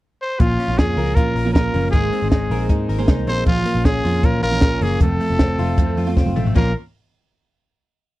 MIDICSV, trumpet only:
0, 0, Header, 1, 2, 480
1, 0, Start_track
1, 0, Key_signature, -5, "minor"
1, 0, Tempo, 385356
1, 497, Time_signature, 4, 2, 24, 8
1, 10214, End_track
2, 0, Start_track
2, 0, Title_t, "Trumpet"
2, 0, Program_c, 0, 56
2, 270, Note_on_c, 0, 72, 88
2, 499, Note_on_c, 0, 65, 94
2, 518, Note_off_c, 0, 72, 0
2, 973, Note_on_c, 0, 68, 82
2, 992, Note_off_c, 0, 65, 0
2, 1431, Note_on_c, 0, 70, 92
2, 1449, Note_off_c, 0, 68, 0
2, 1903, Note_off_c, 0, 70, 0
2, 1911, Note_on_c, 0, 70, 85
2, 2366, Note_off_c, 0, 70, 0
2, 2377, Note_on_c, 0, 68, 88
2, 2837, Note_off_c, 0, 68, 0
2, 2869, Note_on_c, 0, 68, 76
2, 3323, Note_off_c, 0, 68, 0
2, 4092, Note_on_c, 0, 72, 103
2, 4312, Note_off_c, 0, 72, 0
2, 4321, Note_on_c, 0, 65, 92
2, 4800, Note_on_c, 0, 68, 86
2, 4818, Note_off_c, 0, 65, 0
2, 5293, Note_on_c, 0, 70, 78
2, 5312, Note_off_c, 0, 68, 0
2, 5512, Note_off_c, 0, 70, 0
2, 5520, Note_on_c, 0, 70, 100
2, 6010, Note_on_c, 0, 68, 86
2, 6029, Note_off_c, 0, 70, 0
2, 6247, Note_off_c, 0, 68, 0
2, 6262, Note_on_c, 0, 69, 85
2, 7647, Note_off_c, 0, 69, 0
2, 8174, Note_on_c, 0, 70, 83
2, 8396, Note_off_c, 0, 70, 0
2, 10214, End_track
0, 0, End_of_file